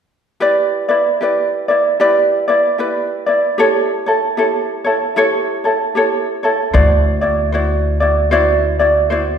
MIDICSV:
0, 0, Header, 1, 3, 480
1, 0, Start_track
1, 0, Key_signature, 1, "major"
1, 0, Tempo, 791557
1, 248, Time_signature, 4, 2, 24, 8
1, 5690, End_track
2, 0, Start_track
2, 0, Title_t, "Ukulele"
2, 0, Program_c, 0, 24
2, 245, Note_on_c, 0, 67, 63
2, 246, Note_on_c, 0, 64, 60
2, 249, Note_on_c, 0, 71, 69
2, 255, Note_on_c, 0, 74, 67
2, 530, Note_off_c, 0, 74, 0
2, 535, Note_off_c, 0, 71, 0
2, 537, Note_off_c, 0, 64, 0
2, 537, Note_off_c, 0, 67, 0
2, 537, Note_on_c, 0, 74, 49
2, 542, Note_on_c, 0, 71, 49
2, 549, Note_on_c, 0, 64, 39
2, 728, Note_off_c, 0, 74, 0
2, 729, Note_off_c, 0, 71, 0
2, 731, Note_off_c, 0, 64, 0
2, 732, Note_on_c, 0, 67, 43
2, 738, Note_on_c, 0, 64, 52
2, 742, Note_on_c, 0, 71, 54
2, 746, Note_on_c, 0, 74, 59
2, 1013, Note_off_c, 0, 74, 0
2, 1020, Note_off_c, 0, 71, 0
2, 1020, Note_on_c, 0, 74, 45
2, 1021, Note_off_c, 0, 67, 0
2, 1024, Note_off_c, 0, 64, 0
2, 1027, Note_on_c, 0, 71, 41
2, 1035, Note_on_c, 0, 64, 41
2, 1208, Note_off_c, 0, 64, 0
2, 1209, Note_off_c, 0, 71, 0
2, 1210, Note_off_c, 0, 74, 0
2, 1211, Note_on_c, 0, 67, 66
2, 1215, Note_on_c, 0, 64, 71
2, 1217, Note_on_c, 0, 71, 71
2, 1218, Note_on_c, 0, 74, 71
2, 1495, Note_off_c, 0, 74, 0
2, 1501, Note_off_c, 0, 67, 0
2, 1502, Note_off_c, 0, 71, 0
2, 1502, Note_on_c, 0, 74, 44
2, 1503, Note_off_c, 0, 64, 0
2, 1510, Note_on_c, 0, 71, 45
2, 1515, Note_on_c, 0, 64, 38
2, 1685, Note_off_c, 0, 64, 0
2, 1685, Note_off_c, 0, 71, 0
2, 1687, Note_on_c, 0, 67, 43
2, 1692, Note_off_c, 0, 74, 0
2, 1692, Note_on_c, 0, 64, 56
2, 1698, Note_on_c, 0, 71, 58
2, 1698, Note_on_c, 0, 74, 54
2, 1972, Note_off_c, 0, 74, 0
2, 1979, Note_off_c, 0, 71, 0
2, 1980, Note_off_c, 0, 67, 0
2, 1980, Note_on_c, 0, 74, 42
2, 1982, Note_off_c, 0, 64, 0
2, 1986, Note_on_c, 0, 71, 36
2, 1993, Note_on_c, 0, 64, 33
2, 2169, Note_off_c, 0, 64, 0
2, 2171, Note_off_c, 0, 74, 0
2, 2171, Note_on_c, 0, 67, 73
2, 2174, Note_off_c, 0, 71, 0
2, 2176, Note_on_c, 0, 64, 62
2, 2179, Note_on_c, 0, 69, 78
2, 2181, Note_on_c, 0, 73, 75
2, 2457, Note_off_c, 0, 73, 0
2, 2461, Note_off_c, 0, 67, 0
2, 2464, Note_off_c, 0, 64, 0
2, 2464, Note_on_c, 0, 73, 50
2, 2466, Note_off_c, 0, 69, 0
2, 2472, Note_on_c, 0, 69, 43
2, 2476, Note_on_c, 0, 64, 39
2, 2648, Note_off_c, 0, 64, 0
2, 2651, Note_off_c, 0, 69, 0
2, 2651, Note_on_c, 0, 67, 58
2, 2653, Note_off_c, 0, 73, 0
2, 2656, Note_on_c, 0, 64, 47
2, 2659, Note_on_c, 0, 69, 58
2, 2663, Note_on_c, 0, 73, 50
2, 2931, Note_off_c, 0, 73, 0
2, 2938, Note_on_c, 0, 73, 49
2, 2941, Note_off_c, 0, 69, 0
2, 2942, Note_off_c, 0, 67, 0
2, 2944, Note_off_c, 0, 64, 0
2, 2948, Note_on_c, 0, 69, 39
2, 2952, Note_on_c, 0, 64, 44
2, 3126, Note_off_c, 0, 64, 0
2, 3130, Note_off_c, 0, 69, 0
2, 3130, Note_off_c, 0, 73, 0
2, 3130, Note_on_c, 0, 67, 66
2, 3133, Note_on_c, 0, 64, 70
2, 3137, Note_on_c, 0, 69, 82
2, 3140, Note_on_c, 0, 73, 77
2, 3413, Note_off_c, 0, 73, 0
2, 3419, Note_off_c, 0, 69, 0
2, 3421, Note_off_c, 0, 67, 0
2, 3421, Note_on_c, 0, 73, 39
2, 3423, Note_off_c, 0, 64, 0
2, 3427, Note_on_c, 0, 69, 40
2, 3436, Note_on_c, 0, 64, 37
2, 3607, Note_off_c, 0, 64, 0
2, 3608, Note_on_c, 0, 67, 53
2, 3612, Note_off_c, 0, 69, 0
2, 3612, Note_off_c, 0, 73, 0
2, 3614, Note_on_c, 0, 64, 56
2, 3619, Note_on_c, 0, 69, 58
2, 3621, Note_on_c, 0, 73, 65
2, 3892, Note_off_c, 0, 73, 0
2, 3899, Note_off_c, 0, 69, 0
2, 3899, Note_on_c, 0, 73, 41
2, 3900, Note_off_c, 0, 67, 0
2, 3903, Note_off_c, 0, 64, 0
2, 3906, Note_on_c, 0, 69, 42
2, 3911, Note_on_c, 0, 64, 41
2, 4081, Note_off_c, 0, 73, 0
2, 4082, Note_off_c, 0, 64, 0
2, 4084, Note_on_c, 0, 72, 64
2, 4086, Note_off_c, 0, 69, 0
2, 4086, Note_on_c, 0, 66, 71
2, 4089, Note_on_c, 0, 64, 69
2, 4089, Note_on_c, 0, 74, 77
2, 4367, Note_off_c, 0, 74, 0
2, 4373, Note_off_c, 0, 64, 0
2, 4374, Note_on_c, 0, 74, 47
2, 4378, Note_off_c, 0, 66, 0
2, 4378, Note_off_c, 0, 72, 0
2, 4380, Note_on_c, 0, 64, 43
2, 4385, Note_on_c, 0, 66, 45
2, 4562, Note_on_c, 0, 72, 51
2, 4564, Note_off_c, 0, 66, 0
2, 4568, Note_off_c, 0, 64, 0
2, 4568, Note_off_c, 0, 74, 0
2, 4571, Note_on_c, 0, 66, 60
2, 4575, Note_on_c, 0, 64, 60
2, 4577, Note_on_c, 0, 74, 51
2, 4846, Note_off_c, 0, 74, 0
2, 4853, Note_on_c, 0, 74, 46
2, 4855, Note_off_c, 0, 64, 0
2, 4857, Note_off_c, 0, 72, 0
2, 4860, Note_off_c, 0, 66, 0
2, 4862, Note_on_c, 0, 64, 44
2, 4867, Note_on_c, 0, 66, 39
2, 5037, Note_off_c, 0, 66, 0
2, 5040, Note_on_c, 0, 72, 70
2, 5041, Note_off_c, 0, 64, 0
2, 5041, Note_off_c, 0, 74, 0
2, 5044, Note_on_c, 0, 66, 70
2, 5048, Note_on_c, 0, 64, 81
2, 5048, Note_on_c, 0, 74, 90
2, 5325, Note_off_c, 0, 74, 0
2, 5330, Note_off_c, 0, 64, 0
2, 5333, Note_on_c, 0, 74, 45
2, 5335, Note_off_c, 0, 72, 0
2, 5337, Note_off_c, 0, 66, 0
2, 5338, Note_on_c, 0, 64, 45
2, 5344, Note_on_c, 0, 66, 41
2, 5517, Note_off_c, 0, 66, 0
2, 5519, Note_on_c, 0, 72, 53
2, 5522, Note_off_c, 0, 64, 0
2, 5524, Note_on_c, 0, 66, 47
2, 5525, Note_off_c, 0, 74, 0
2, 5530, Note_on_c, 0, 64, 63
2, 5532, Note_on_c, 0, 74, 59
2, 5690, Note_off_c, 0, 64, 0
2, 5690, Note_off_c, 0, 66, 0
2, 5690, Note_off_c, 0, 72, 0
2, 5690, Note_off_c, 0, 74, 0
2, 5690, End_track
3, 0, Start_track
3, 0, Title_t, "Upright bass"
3, 0, Program_c, 1, 32
3, 4088, Note_on_c, 1, 38, 69
3, 5690, Note_off_c, 1, 38, 0
3, 5690, End_track
0, 0, End_of_file